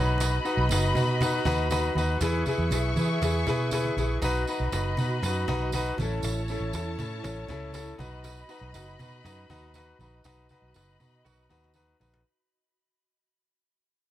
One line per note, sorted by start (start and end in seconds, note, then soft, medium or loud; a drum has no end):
0.00 0.38 B1 loud
0.00 0.35 D#4 medium
0.00 0.36 F#4 medium
0.00 2.18 F#4 loud
0.00 0.36 B4 loud
0.00 2.18 D#5 medium
0.00 2.18 B5 loud
0.18 cajon slap loud
0.18 tambourine loud
0.18 muted conga medium
0.45 0.65 D#4 medium
0.45 0.65 F#4 medium
0.45 0.65 B4 loud
0.45 cajon slap soft
0.45 tambourine medium
0.57 0.68 B1 loud
0.69 0.92 F#1 loud
0.69 0.90 D#4 medium
0.69 0.91 F#4 medium
0.69 0.91 B4 medium
0.69 cajon slap loud
0.69 tambourine loud
0.69 high conga medium
0.95 1.38 B2 loud
0.95 1.15 D#4 medium
0.95 1.16 F#4 medium
0.95 1.16 B4 medium
0.95 cajon bass medium
0.95 tambourine medium
0.95 muted conga soft
1.21 1.41 D#4 loud
1.21 1.41 F#4 medium
1.21 1.41 B4 loud
1.21 cajon bass medium
1.21 cajon slap loud
1.21 tambourine medium
1.45 1.89 D#2 loud
1.45 1.65 D#4 loud
1.45 1.66 F#4 loud
1.45 1.66 B4 loud
1.45 cajon bass loud
1.45 tambourine medium
1.45 muted conga medium
1.45 low conga medium
1.70 1.90 D#4 loud
1.70 1.91 F#4 loud
1.70 1.91 B4 loud
1.70 cajon slap loud
1.70 tambourine loud
1.70 high conga medium
1.95 2.17 D#2 loud
1.95 2.16 D#4 medium
1.95 2.16 F#4 medium
1.95 2.17 B4 loud
1.95 tambourine medium
1.95 high conga medium
2.21 2.43 E2 medium
2.21 2.41 E4 loud
2.21 4.19 G#4 medium
2.21 2.41 G#4 loud
2.21 2.42 B4 loud
2.21 4.19 E5 loud
2.21 4.19 C#6 medium
2.21 cajon bass loud
2.21 cajon slap loud
2.21 tambourine loud
2.21 muted conga medium
2.46 2.66 E4 medium
2.46 2.67 G#4 medium
2.46 2.67 B4 loud
2.46 cajon bass medium
2.46 tambourine medium
2.46 muted conga soft
2.58 2.69 E2 loud
2.71 2.93 B1 loud
2.71 2.91 E4 medium
2.71 2.92 G#4 medium
2.71 2.92 B4 medium
2.71 cajon slap loud
2.71 tambourine loud
2.71 high conga medium
2.96 3.18 E3 loud
2.96 3.17 E4 medium
2.96 3.17 G#4 medium
2.96 3.17 B4 medium
2.96 cajon bass loud
2.96 tambourine medium
2.96 muted conga soft
2.96 low conga medium
3.21 3.43 E2 loud
3.21 3.42 E4 medium
3.21 3.42 G#4 medium
3.21 3.42 B4 loud
3.21 cajon bass loud
3.21 cajon slap loud
3.21 tambourine medium
3.46 3.90 B2 loud
3.46 3.67 E4 loud
3.46 3.67 G#4 loud
3.46 3.68 B4 loud
3.46 cajon bass loud
3.46 tambourine medium
3.46 muted conga medium
3.46 low conga medium
3.71 3.92 E4 loud
3.71 3.92 G#4 loud
3.71 3.93 B4 loud
3.71 cajon slap loud
3.71 tambourine loud
3.71 high conga medium
3.85 high conga medium
3.96 4.18 A#1 loud
3.96 4.17 E4 medium
3.96 4.17 G#4 medium
3.96 4.18 B4 medium
3.96 tambourine medium
3.96 high conga medium
4.21 4.43 B1 loud
4.21 4.42 D#4 loud
4.21 5.95 F#4 medium
4.21 4.43 F#4 loud
4.21 4.43 B4 loud
4.21 5.95 D#5 medium
4.21 5.95 B5 medium
4.21 cajon bass loud
4.21 cajon slap loud
4.21 tambourine loud
4.21 muted conga medium
4.46 4.67 D#4 medium
4.46 4.68 F#4 medium
4.46 4.68 B4 loud
4.46 cajon slap soft
4.46 tambourine medium
4.60 4.71 B1 loud
4.72 4.94 F#1 loud
4.72 4.92 D#4 medium
4.72 4.92 F#4 medium
4.72 4.93 B4 medium
4.72 cajon slap loud
4.72 tambourine loud
4.72 high conga medium
4.97 5.19 B2 loud
4.97 5.17 D#4 medium
4.97 5.18 F#4 medium
4.97 5.18 B4 medium
4.97 cajon bass medium
4.97 tambourine medium
4.97 muted conga soft
5.22 5.44 F#2 loud
5.22 5.43 D#4 medium
5.22 5.44 F#4 medium
5.22 5.44 B4 loud
5.22 cajon bass medium
5.22 cajon slap loud
5.22 tambourine medium
5.47 5.91 B1 loud
5.47 5.67 D#4 loud
5.47 5.68 F#4 loud
5.47 5.68 B4 loud
5.47 cajon bass loud
5.47 tambourine medium
5.47 muted conga medium
5.47 low conga medium
5.72 5.93 D#4 loud
5.72 5.93 F#4 loud
5.72 5.94 B4 loud
5.72 cajon slap loud
5.72 tambourine loud
5.72 high conga medium
5.98 6.20 A1 medium
5.98 6.39 C#4 medium
5.98 7.95 E4 loud
5.98 6.40 E4 medium
5.98 7.95 C#5 loud
5.98 7.96 A5 loud
5.98 cajon bass loud
5.98 cajon slap soft
5.98 tambourine medium
5.98 high conga medium
6.02 6.40 A4 medium
6.22 6.55 A1 loud
6.22 cajon slap loud
6.22 tambourine loud
6.22 muted conga soft
6.48 6.69 C#4 medium
6.48 6.69 E4 medium
6.48 6.69 A4 loud
6.48 tambourine medium
6.61 6.72 A1 medium
6.73 6.95 E2 loud
6.73 6.93 C#4 medium
6.73 6.93 E4 medium
6.73 6.94 A4 loud
6.73 cajon slap loud
6.73 tambourine loud
6.73 high conga medium
6.99 7.20 A2 loud
6.99 7.18 C#4 medium
6.99 7.19 E4 medium
6.99 7.19 A4 medium
6.99 cajon bass loud
6.99 tambourine medium
6.99 muted conga medium
7.23 7.45 A1 loud
7.23 7.43 C#4 loud
7.23 7.43 E4 medium
7.23 7.44 A4 medium
7.23 cajon bass medium
7.23 cajon slap loud
7.23 tambourine medium
7.49 7.92 C#2 loud
7.49 7.69 C#4 loud
7.49 7.69 E4 loud
7.49 7.69 A4 loud
7.49 cajon bass medium
7.49 tambourine medium
7.49 muted conga medium
7.49 low conga medium
7.73 7.93 C#4 loud
7.73 7.93 E4 loud
7.73 7.94 A4 loud
7.73 cajon slap loud
7.73 tambourine loud
7.73 high conga medium
7.98 8.42 B1 loud
7.98 8.39 D#4 medium
7.98 10.21 F#4 medium
7.98 8.39 F#4 medium
7.98 8.40 B4 loud
7.98 10.21 D#5 loud
7.98 10.21 B5 loud
7.98 cajon bass loud
7.98 cajon slap soft
7.98 tambourine medium
7.98 high conga medium
8.24 cajon slap loud
8.24 tambourine loud
8.24 muted conga soft
8.49 8.68 D#4 medium
8.49 8.69 F#4 medium
8.49 8.69 B4 loud
8.49 cajon slap soft
8.49 tambourine medium
8.61 8.72 B1 loud
8.74 8.95 F#1 loud
8.74 8.94 D#4 medium
8.74 8.94 F#4 medium
8.74 8.94 B4 medium
8.74 cajon slap loud
8.74 tambourine loud
8.74 high conga medium
8.99 9.21 B2 loud
8.99 9.19 D#4 medium
8.99 9.20 F#4 medium
8.99 9.20 B4 medium
8.99 cajon bass loud
8.99 tambourine medium
8.99 muted conga soft
9.24 9.46 F#2 loud
9.24 9.44 D#4 loud
9.24 9.44 F#4 medium
9.24 9.45 B4 loud
9.24 cajon bass medium
9.24 cajon slap loud
9.24 tambourine medium
9.49 9.92 D#2 loud
9.49 9.69 D#4 loud
9.49 9.70 F#4 loud
9.49 9.70 B4 loud
9.49 cajon bass loud
9.49 tambourine medium
9.49 muted conga medium
9.49 low conga medium
9.74 9.94 D#4 loud
9.74 9.95 F#4 loud
9.74 9.95 B4 loud
9.74 cajon slap loud
9.74 tambourine loud
9.74 high conga medium
9.99 10.21 A#1 loud
9.99 10.20 D#4 medium
9.99 10.20 F#4 medium
9.99 10.21 B4 medium
9.99 tambourine medium
9.99 high conga medium
10.24 10.46 B1 loud
10.24 10.44 D#4 loud
10.24 12.21 F#4 medium
10.24 10.45 F#4 loud
10.24 10.45 B4 loud
10.24 12.22 D#5 loud
10.24 12.22 B5 loud
10.24 cajon bass loud
10.24 cajon slap loud
10.24 tambourine loud
10.24 muted conga medium
10.49 10.70 D#4 medium
10.49 10.70 F#4 medium
10.49 10.71 B4 loud
10.49 cajon bass loud
10.49 tambourine medium
10.49 muted conga soft
10.62 10.73 B1 loud
10.74 10.96 F#1 loud
10.74 10.95 D#4 medium
10.74 10.95 F#4 medium
10.74 10.95 B4 medium
10.74 cajon slap loud
10.74 tambourine loud
10.74 high conga medium
10.99 11.21 B2 loud
10.99 11.19 D#4 medium
10.99 11.20 F#4 medium
10.99 11.20 B4 medium
10.99 cajon bass medium
10.99 tambourine medium
10.99 muted conga soft
11.24 11.47 B1 loud
11.24 11.61 D#3 loud
11.24 11.61 F#3 loud
11.24 11.61 B3 loud
11.24 11.44 D#4 medium
11.24 11.45 F#4 medium
11.24 11.61 F#4 loud
11.24 11.45 B4 loud
11.24 cajon bass medium
11.24 cajon slap medium
11.24 tambourine medium
11.49 11.93 D#2 loud
11.49 11.69 D#4 loud
11.49 11.70 F#4 loud
11.49 11.70 B4 loud
11.49 cajon slap medium
11.49 tambourine medium
11.49 muted conga medium
11.49 low conga medium
11.64 cajon slap medium
11.74 11.94 D#4 loud
11.74 11.95 F#4 loud
11.74 11.95 B4 loud
11.74 cajon slap medium
11.74 tambourine loud
11.74 high conga medium
12.00 12.22 A#1 loud
12.00 12.20 D#4 medium
12.00 12.20 F#4 medium
12.00 12.20 B4 loud
12.00 cajon slap medium
12.00 tambourine medium
12.00 high conga medium
12.14 cajon slap loud